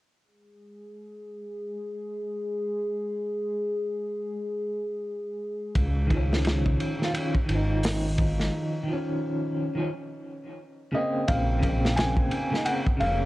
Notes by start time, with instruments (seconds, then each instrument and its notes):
0.25 analog synth pad G#4
5.75 detuned saw bass C#2, kick, ride
6.07 clean electric guitar D#3, kick, ride
6.12 clean electric guitar F3
6.17 clean electric guitar C#4
6.33 snare
6.45 snare, ride
6.66 kick
6.80 ride
6.99 clean electric guitar D#3 F3, snare
7.04 clean electric guitar F4
7.13 clean electric guitar D#3 F3, ride
7.18 clean electric guitar C#4
7.35 kick
7.45 clean electric guitar D#3, ride
7.49 detuned saw bass G#1, clean electric guitar F3
7.55 clean electric guitar D#4
7.83 snare, open hi-hat
8.18 kick, ride
8.40 snare
8.83 clean electric guitar D#3
8.88 clean electric guitar F3
8.93 clean electric guitar C#4
9.75 clean electric guitar D#3 F3
9.80 clean electric guitar C#4
10.92 clean electric guitar C#3 A#3, felt piano D#5
10.97 clean electric guitar C4
11.28 detuned saw bass A#1, felt piano F5, kick, ride
11.59 clean electric guitar C#3, kick
11.63 clean electric guitar A#3, ride
11.68 clean electric guitar C4
11.85 snare
11.96 felt piano G#5, snare, ride
12.17 kick
12.31 ride
12.51 clean electric guitar C#3 A#3, snare
12.55 clean electric guitar D#4
12.65 clean electric guitar C#3 A#3, felt piano F#5, ride
12.70 clean electric guitar C4
12.87 kick
12.97 detuned saw bass F1, clean electric guitar C#3, felt piano F5, ride
13.02 clean electric guitar A#3
13.07 clean electric guitar C#4